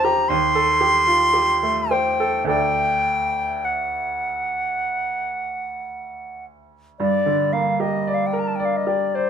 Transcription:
0, 0, Header, 1, 3, 480
1, 0, Start_track
1, 0, Key_signature, -2, "minor"
1, 0, Tempo, 1034483
1, 622, Tempo, 1145038
1, 1103, Time_signature, 4, 2, 24, 8
1, 2062, Tempo, 1109057
1, 3022, Tempo, 1073345
1, 4052, End_track
2, 0, Start_track
2, 0, Title_t, "Flute"
2, 0, Program_c, 0, 73
2, 18, Note_on_c, 0, 82, 91
2, 132, Note_on_c, 0, 84, 113
2, 139, Note_off_c, 0, 82, 0
2, 862, Note_on_c, 0, 79, 81
2, 868, Note_off_c, 0, 84, 0
2, 1095, Note_off_c, 0, 79, 0
2, 1097, Note_on_c, 0, 79, 93
2, 1589, Note_on_c, 0, 78, 64
2, 1595, Note_off_c, 0, 79, 0
2, 2787, Note_off_c, 0, 78, 0
2, 3023, Note_on_c, 0, 74, 70
2, 3261, Note_on_c, 0, 77, 65
2, 3268, Note_off_c, 0, 74, 0
2, 3385, Note_on_c, 0, 75, 65
2, 3391, Note_off_c, 0, 77, 0
2, 3535, Note_on_c, 0, 77, 58
2, 3541, Note_off_c, 0, 75, 0
2, 3590, Note_on_c, 0, 79, 51
2, 3597, Note_off_c, 0, 77, 0
2, 3648, Note_on_c, 0, 82, 52
2, 3655, Note_off_c, 0, 79, 0
2, 3683, Note_on_c, 0, 81, 52
2, 3690, Note_off_c, 0, 82, 0
2, 3721, Note_on_c, 0, 79, 54
2, 3727, Note_off_c, 0, 81, 0
2, 3763, Note_on_c, 0, 77, 51
2, 3770, Note_off_c, 0, 79, 0
2, 3815, Note_on_c, 0, 75, 52
2, 3822, Note_off_c, 0, 77, 0
2, 3864, Note_on_c, 0, 74, 61
2, 3871, Note_off_c, 0, 75, 0
2, 3985, Note_on_c, 0, 72, 71
2, 3992, Note_off_c, 0, 74, 0
2, 4052, Note_off_c, 0, 72, 0
2, 4052, End_track
3, 0, Start_track
3, 0, Title_t, "Grand piano"
3, 0, Program_c, 1, 0
3, 0, Control_c, 1, 64, 127
3, 0, Note_on_c, 1, 39, 65
3, 0, Note_on_c, 1, 60, 54
3, 0, Note_on_c, 1, 65, 49
3, 0, Note_on_c, 1, 67, 54
3, 0, Note_on_c, 1, 72, 54
3, 21, Note_off_c, 1, 67, 0
3, 21, Note_on_c, 1, 67, 54
3, 93, Note_off_c, 1, 72, 0
3, 120, Note_off_c, 1, 39, 0
3, 137, Note_off_c, 1, 67, 0
3, 138, Note_on_c, 1, 39, 62
3, 146, Control_c, 1, 64, 0
3, 147, Note_off_c, 1, 60, 0
3, 148, Note_off_c, 1, 65, 0
3, 222, Control_c, 1, 64, 127
3, 256, Note_on_c, 1, 69, 52
3, 374, Note_on_c, 1, 67, 50
3, 447, Note_off_c, 1, 69, 0
3, 496, Note_on_c, 1, 65, 42
3, 571, Note_off_c, 1, 67, 0
3, 619, Note_on_c, 1, 67, 46
3, 622, Note_off_c, 1, 65, 0
3, 743, Note_on_c, 1, 57, 47
3, 810, Note_off_c, 1, 67, 0
3, 860, Note_on_c, 1, 72, 48
3, 934, Note_off_c, 1, 57, 0
3, 982, Note_on_c, 1, 69, 50
3, 1055, Note_off_c, 1, 72, 0
3, 1085, Note_on_c, 1, 38, 50
3, 1086, Note_off_c, 1, 39, 0
3, 1089, Note_off_c, 1, 69, 0
3, 1090, Note_on_c, 1, 57, 40
3, 1095, Note_on_c, 1, 69, 40
3, 1101, Note_on_c, 1, 74, 41
3, 1111, Control_c, 1, 64, 0
3, 1177, Control_c, 1, 64, 127
3, 2995, Note_off_c, 1, 38, 0
3, 2998, Note_off_c, 1, 57, 0
3, 3001, Note_off_c, 1, 69, 0
3, 3004, Note_off_c, 1, 74, 0
3, 3023, Note_on_c, 1, 43, 47
3, 3031, Control_c, 1, 64, 0
3, 3093, Control_c, 1, 64, 127
3, 3141, Note_on_c, 1, 50, 39
3, 3263, Note_on_c, 1, 58, 38
3, 3334, Note_off_c, 1, 50, 0
3, 3381, Note_on_c, 1, 67, 40
3, 3456, Note_off_c, 1, 58, 0
3, 3504, Note_on_c, 1, 74, 43
3, 3574, Note_off_c, 1, 67, 0
3, 3619, Note_on_c, 1, 70, 43
3, 3695, Note_off_c, 1, 74, 0
3, 3737, Note_on_c, 1, 74, 43
3, 3811, Note_off_c, 1, 70, 0
3, 3860, Note_on_c, 1, 67, 37
3, 3931, Note_off_c, 1, 74, 0
3, 3986, Note_on_c, 1, 74, 40
3, 4052, Note_off_c, 1, 43, 0
3, 4052, Note_off_c, 1, 67, 0
3, 4052, Note_off_c, 1, 74, 0
3, 4052, End_track
0, 0, End_of_file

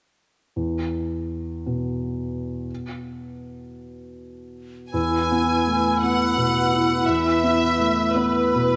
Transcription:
0, 0, Header, 1, 6, 480
1, 0, Start_track
1, 0, Key_signature, 4, "major"
1, 0, Tempo, 721154
1, 377, Time_signature, 6, 3, 24, 8
1, 1335, Tempo, 697674
1, 2295, Tempo, 758534
1, 3255, Tempo, 715137
1, 5175, Tempo, 759494
1, 5796, End_track
2, 0, Start_track
2, 0, Title_t, "Flute"
2, 0, Program_c, 0, 73
2, 3268, Note_on_c, 0, 88, 28
2, 5796, Note_off_c, 0, 88, 0
2, 5796, End_track
3, 0, Start_track
3, 0, Title_t, "Violin section"
3, 0, Program_c, 1, 48
3, 3246, Note_on_c, 1, 80, 47
3, 3952, Note_off_c, 1, 80, 0
3, 3991, Note_on_c, 1, 78, 45
3, 4695, Note_on_c, 1, 76, 49
3, 4699, Note_off_c, 1, 78, 0
3, 5406, Note_on_c, 1, 71, 41
3, 5409, Note_off_c, 1, 76, 0
3, 5796, Note_off_c, 1, 71, 0
3, 5796, End_track
4, 0, Start_track
4, 0, Title_t, "Cor anglais"
4, 0, Program_c, 2, 69
4, 3265, Note_on_c, 2, 71, 29
4, 5796, Note_off_c, 2, 71, 0
4, 5796, End_track
5, 0, Start_track
5, 0, Title_t, "Clarinet"
5, 0, Program_c, 3, 71
5, 3268, Note_on_c, 3, 64, 28
5, 5796, Note_off_c, 3, 64, 0
5, 5796, End_track
6, 0, Start_track
6, 0, Title_t, "Felt piano"
6, 0, Program_c, 4, 0
6, 374, Note_on_c, 4, 40, 23
6, 506, Control_c, 4, 64, 127
6, 1107, Note_on_c, 4, 47, 20
6, 1778, Note_off_c, 4, 40, 0
6, 1820, Control_c, 4, 64, 0
6, 1912, Control_c, 4, 64, 127
6, 3258, Note_off_c, 4, 47, 0
6, 3266, Control_c, 4, 64, 0
6, 3266, Note_on_c, 4, 40, 31
6, 3398, Control_c, 4, 64, 127
6, 3521, Note_on_c, 4, 59, 23
6, 3757, Note_on_c, 4, 57, 18
6, 3900, Note_off_c, 4, 59, 0
6, 3990, Note_off_c, 4, 57, 0
6, 4002, Note_on_c, 4, 59, 22
6, 4228, Note_on_c, 4, 47, 21
6, 4370, Note_off_c, 4, 59, 0
6, 4472, Note_on_c, 4, 64, 21
6, 4603, Note_off_c, 4, 47, 0
6, 4674, Note_off_c, 4, 40, 0
6, 4706, Control_c, 4, 64, 0
6, 4707, Note_on_c, 4, 40, 27
6, 4812, Control_c, 4, 64, 127
6, 4847, Note_off_c, 4, 64, 0
6, 4943, Note_on_c, 4, 59, 22
6, 5182, Note_on_c, 4, 57, 20
6, 5319, Note_off_c, 4, 59, 0
6, 5412, Note_off_c, 4, 57, 0
6, 5413, Note_on_c, 4, 59, 23
6, 5660, Note_on_c, 4, 47, 24
6, 5796, Note_off_c, 4, 40, 0
6, 5796, Note_off_c, 4, 47, 0
6, 5796, Note_off_c, 4, 59, 0
6, 5796, End_track
0, 0, End_of_file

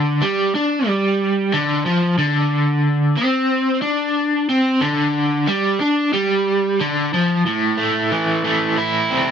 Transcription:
0, 0, Header, 1, 2, 480
1, 0, Start_track
1, 0, Tempo, 656455
1, 1606, Time_signature, 4, 2, 24, 8
1, 6809, End_track
2, 0, Start_track
2, 0, Title_t, "Overdriven electric guitar"
2, 0, Program_c, 0, 29
2, 0, Note_on_c, 0, 50, 102
2, 157, Note_off_c, 0, 50, 0
2, 159, Note_on_c, 0, 55, 102
2, 396, Note_off_c, 0, 55, 0
2, 403, Note_on_c, 0, 62, 89
2, 633, Note_off_c, 0, 62, 0
2, 633, Note_on_c, 0, 55, 105
2, 1112, Note_off_c, 0, 55, 0
2, 1123, Note_on_c, 0, 50, 112
2, 1355, Note_off_c, 0, 50, 0
2, 1358, Note_on_c, 0, 53, 102
2, 1593, Note_off_c, 0, 53, 0
2, 1596, Note_on_c, 0, 50, 98
2, 2313, Note_off_c, 0, 50, 0
2, 2321, Note_on_c, 0, 60, 93
2, 2787, Note_off_c, 0, 60, 0
2, 2790, Note_on_c, 0, 62, 101
2, 3270, Note_off_c, 0, 62, 0
2, 3288, Note_on_c, 0, 60, 101
2, 3519, Note_off_c, 0, 60, 0
2, 3520, Note_on_c, 0, 50, 106
2, 3995, Note_off_c, 0, 50, 0
2, 4002, Note_on_c, 0, 55, 107
2, 4236, Note_off_c, 0, 55, 0
2, 4244, Note_on_c, 0, 62, 89
2, 4477, Note_off_c, 0, 62, 0
2, 4485, Note_on_c, 0, 55, 92
2, 4958, Note_off_c, 0, 55, 0
2, 4973, Note_on_c, 0, 50, 106
2, 5203, Note_off_c, 0, 50, 0
2, 5218, Note_on_c, 0, 53, 100
2, 5446, Note_off_c, 0, 53, 0
2, 5455, Note_on_c, 0, 45, 61
2, 5684, Note_on_c, 0, 57, 53
2, 5935, Note_on_c, 0, 52, 53
2, 6171, Note_off_c, 0, 57, 0
2, 6174, Note_on_c, 0, 57, 54
2, 6418, Note_on_c, 0, 64, 70
2, 6655, Note_off_c, 0, 45, 0
2, 6659, Note_on_c, 0, 60, 65
2, 6809, Note_off_c, 0, 52, 0
2, 6809, Note_off_c, 0, 57, 0
2, 6809, Note_off_c, 0, 60, 0
2, 6809, Note_off_c, 0, 64, 0
2, 6809, End_track
0, 0, End_of_file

